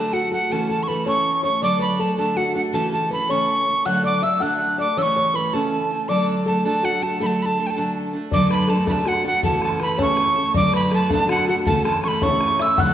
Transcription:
Already playing: steel-string acoustic guitar D3 F#3 A3 F#4 A4, felt piano A4, tin whistle A5
0.13 felt piano F#4, tin whistle F#5
0.32 steel-string acoustic guitar A3 F#4 A4, felt piano F#4, tin whistle F#5
0.50 steel-string acoustic guitar C#3 E3 A3 C#4 A4, felt piano A4, tin whistle A5
0.69 felt piano A4, tin whistle A5
0.83 tin whistle C#6
0.88 steel-string acoustic guitar E3 A3 C#4 A4, felt piano B4, tin whistle B5
1.06 steel-string acoustic guitar C#3 E3 A3 C#4 A4, felt piano C#5, tin whistle C#6
1.43 steel-string acoustic guitar A3 C#4 A4, felt piano C#5, tin whistle C#6
1.62 steel-string acoustic guitar D3 F#3 A3 D4 A4, felt piano D5, tin whistle D6
1.79 felt piano B4, tin whistle B5
1.98 steel-string acoustic guitar F#3 A3 D4 A4, felt piano A4, tin whistle A5
2.18 steel-string acoustic guitar D3 F#3 A3 D4 A4, felt piano A4, tin whistle A5
2.37 felt piano F#4, tin whistle F#5
2.55 steel-string acoustic guitar A3 D4 A4, felt piano F#4, tin whistle F#5
2.73 steel-string acoustic guitar C#3 E3 A3 C#4 A4, felt piano A4, tin whistle A5
2.93 felt piano A4, tin whistle A5
3.10 steel-string acoustic guitar E3 A3 C#4 A4, felt piano B4, tin whistle B5
3.29 steel-string acoustic guitar C#3 E3 A3 C#4 A4, felt piano C#5, tin whistle C#6
3.67 steel-string acoustic guitar A3 C#4 A4
3.86 steel-string acoustic guitar D3 F#3 A3 D4 A4, felt piano F#5, tin whistle F#6
4.03 felt piano D5, tin whistle D6
4.22 steel-string acoustic guitar F#3 A3 D4 A4, felt piano E5, tin whistle E6
4.40 steel-string acoustic guitar D3 F#3 A3 D4 A4, felt piano F#5, tin whistle F#6
4.78 steel-string acoustic guitar A3 D4 A4, felt piano D5, tin whistle D6
4.97 steel-string acoustic guitar C#3 E3 A3 C#4 A4, felt piano C#5, tin whistle E6
5.02 tin whistle C#6
5.16 felt piano C#5
5.34 steel-string acoustic guitar E3 A3 C#4 A4, felt piano B4, tin whistle B5
5.53 steel-string acoustic guitar C#3 E3 A3 C#4 A4, felt piano A4, tin whistle A5
5.91 steel-string acoustic guitar A3 C#4 A4
6.09 steel-string acoustic guitar D3 F#3 A3 D4 A4, felt piano D5, tin whistle D6
6.46 steel-string acoustic guitar F#3 A3 D4 A4, felt piano A4, tin whistle A5
6.65 steel-string acoustic guitar D3 F#3 A3 D4 A4, felt piano A4, tin whistle A5
6.83 felt piano F#4, tin whistle F#5
7.02 steel-string acoustic guitar A3 D4 A4, felt piano A4, tin whistle A5
7.20 steel-string acoustic guitar D3 F#3 A3 D4 A4, felt piano A4, tin whistle B5
7.27 tin whistle A5
7.42 felt piano A4, tin whistle A5 B5
7.57 steel-string acoustic guitar F#3 A3 D4 A4
7.67 felt piano A4, tin whistle G5 A5
7.76 steel-string acoustic guitar D3 F#3 A3 D4 A4
8.13 steel-string acoustic guitar A3 D4 A4
8.31 steel-string acoustic guitar D3 F#3 A3 D4 A4, felt piano D5, tin whistle D6, bodhran
8.50 felt piano B4, tin whistle B5, bodhran
8.67 steel-string acoustic guitar F#3 A3, felt piano A4, tin whistle A5, bodhran
8.72 steel-string acoustic guitar D4 A4
8.87 steel-string acoustic guitar D3 F#3 A3 D4 A4, felt piano A4, tin whistle B5, bodhran
8.92 tin whistle A5
9.05 felt piano F#4, tin whistle F#5, bodhran
9.24 steel-string acoustic guitar A3 D4 A4, felt piano F#4, tin whistle F#5
9.43 steel-string acoustic guitar C#3 E3 A3 C#4 A4, felt piano A4, tin whistle A5, bodhran
9.62 tin whistle A5, bodhran
9.80 steel-string acoustic guitar E3 A3 C#4 A4, felt piano B4, tin whistle B5, bodhran
9.98 steel-string acoustic guitar C#3 E3 A3 C#4 A4, felt piano C#5, tin whistle C#6, bodhran
10.17 bodhran
10.36 steel-string acoustic guitar A3 C#4 A4
10.54 steel-string acoustic guitar D3 F#3 A3 D4 A4, felt piano D5, tin whistle D6, bodhran
10.74 felt piano B4, tin whistle B5, bodhran
10.91 steel-string acoustic guitar F#3 A3 D4 A4, felt piano A4, tin whistle A5, bodhran
11.09 steel-string acoustic guitar D3 F#3 A3 D4 A4, felt piano A4, tin whistle A5, bodhran
11.28 felt piano F#4, tin whistle F#5, bodhran
11.47 steel-string acoustic guitar A3 D4 A4, felt piano F#4, tin whistle F#5
11.65 steel-string acoustic guitar C#3 E3 A3 C#4 A4, felt piano A4, tin whistle A5, bodhran
11.85 felt piano A4, tin whistle A5, bodhran
12.03 steel-string acoustic guitar E3 A3 C#4 A4, tin whistle C#6, bodhran
12.08 tin whistle B5
12.22 steel-string acoustic guitar C#3 E3 A3 C#4 A4, felt piano C#5, tin whistle C#6, bodhran
12.41 bodhran
12.59 steel-string acoustic guitar A3 C#4 A4, felt piano E5, tin whistle E6, bodhran
12.77 steel-string acoustic guitar D3 F#3 A3 D4 A4, felt piano F#5, tin whistle F#6, bodhran

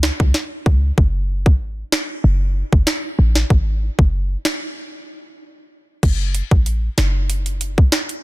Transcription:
Already playing: 808-style bass C#2
0.03 finger snap, snare
0.20 808-style bass C#2, kick
0.34 snare
0.66 808-style bass C#2, kick
0.98 808-style bass F#1, kick
1.46 808-style bass G#1, kick
1.92 finger snap, snare
2.24 808-style bass F#1
2.73 808-style bass F#1, kick
2.87 finger snap, snare
3.19 808-style bass A1
3.35 snare
3.50 808-style bass G#1, kick
3.99 808-style bass F#1, kick
4.45 finger snap, snare
6.03 808-style bass F#1, kick, closed hi-hat, crash
6.35 closed hi-hat
6.51 808-style bass A1, kick
6.66 closed hi-hat
6.98 808-style bass F#1, finger snap, snare, closed hi-hat
7.30 closed hi-hat
7.46 closed hi-hat
7.61 closed hi-hat
7.78 kick
7.92 finger snap, snare, closed hi-hat
8.09 closed hi-hat

